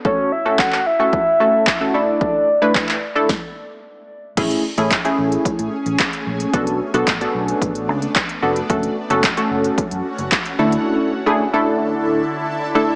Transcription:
<<
  \new Staff \with { instrumentName = "Soft synth lead" } { \time 4/4 \key a \major \tempo 4 = 111 cis''8 e''8 fis''8 e''2 d''8~ | d''4. r2 r8 | r1 | r1 |
r1 | r1 | }
  \new Staff \with { instrumentName = "Analog polysynth" } { \time 4/4 \key a \major <a cis' fis' a'>8 r16 <a cis' fis' a'>8. r16 <a cis' fis' a'>8 r16 <a cis' fis' a'>8 r16 <a cis' fis' a'>16 <a d' e' a'>8~ | <a d' e' a'>8 r16 <a d' e' b'>8. r16 <a d' e' a'>16 r2 | <a cis' e' gis'>8 r16 <a cis' e' gis'>16 r16 <a cis' e' gis'>4~ <a cis' e' gis'>16 r4. | <b d' fis' a'>8 r16 <b d' fis' a'>16 r16 <b d' fis' a'>4~ <b d' fis' a'>16 r4 <b d' fis' a'>16 r16 |
<a cis' fis' a'>8 r16 <a cis' fis' a'>16 r16 <a cis' fis' a'>4~ <a cis' fis' a'>16 r4 <a d' e' a'>8~ | <a d' e' a'>8 r16 <a d' e' gis'>16 r16 <a d' e' a'>4~ <a d' e' a'>16 r4 <a d' e' a'>16 r16 | }
  \new Staff \with { instrumentName = "Ambient pad" } { \time 4/4 \key a \major r1 | r1 | <a cis' gis'>1 | <b d'>1 |
<cis' fis'>2.~ <cis' fis'>8 <d d' e' a'>8~ | <d d' e' a'>1 | }
  \new Staff \with { instrumentName = "Fingered electric bass" } { \clef bass \time 4/4 \key a \major r1 | r1 | a,,8 r16 a,,8 r16 a,,8 r16 a,16 r16 a,,16 r8 bes,,8 | b,,8. b,,16 a,,8 b,,8 a,,8 cis,8 r8 f,,8 |
fis,,8 r16 fis,,8 r16 fis,,8 r16 fis,16 r16 fis,,16 r8 d,8 | r1 | }
  \new DrumStaff \with { instrumentName = "Drums" } \drummode { \time 4/4 bd4 <hc bd>16 hc8. bd4 <hc bd>4 | bd4 <hc bd>16 hc8. <bd sn>4 r4 | <cymc hh bd>16 hh8 hh16 <hc hh bd>16 hh8 hh16 <hh bd>16 hh8 hh16 <hc hh bd>16 hh8 hh16 | <hh bd>16 hh8 hh16 <hc hh bd>16 hh8 hh16 <hh bd>16 hh8 hh16 <hc hh bd>16 hh8 hh16 |
<hh bd>16 hh8 hh16 <hc hh bd>16 hh8 hh16 <hh bd>16 hh8 hh16 <hc hh bd>16 hh8 hh16 | r4 r4 r4 r4 | }
>>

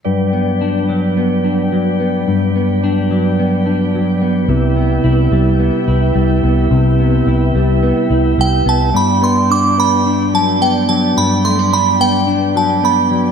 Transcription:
<<
  \new Staff \with { instrumentName = "Synth bell" } { \time 4/4 \key g \major \tempo 4 = 108 r1 | r1 | r1 | r2. g''8 a''8 |
b''8 c'''8 d'''8 b''4 a''8 g''8 a''8 | b''8 c'''8 b''8 g''4 a''8 b''8. r16 | }
  \new Staff \with { instrumentName = "Tonewheel organ" } { \time 4/4 \key g \major << { g''1~ | g''1~ | g''1~ | g''1 |
g''1~ | g''1 | } \\ { <fis b' d''>1~ | <fis b' d''>1 | <e' b' e''>1~ | <e' b' e''>1 |
<b d' d''>1~ | <b d' d''>1 | } >> }
  \new Staff \with { instrumentName = "Clean electric guitar" } { \time 4/4 \key g \major g,8 b8 d'8 fis8 b8 d'8 fis8 b8 | g,8 b8 d'8 fis8 b8 d'8 fis8 b8 | c8 b8 e'8 g8 b8 e'8 g8 b8 | c8 b8 e'8 g8 b8 e'8 g8 b8 |
g,8 b8 d'8 b8 d'8 fis8 b8 fis8 | g,8 a16 b16 d'8 b8 d'8 fis8 b8 fis8 | }
  \new Staff \with { instrumentName = "Fingered electric bass" } { \clef bass \time 4/4 \key g \major r1 | r1 | c,4 c,8 c,8. r16 c,8 c,8 c,8 | c,4 c,8 c,8. r16 c,8 c,8 c,8 |
r1 | r1 | }
>>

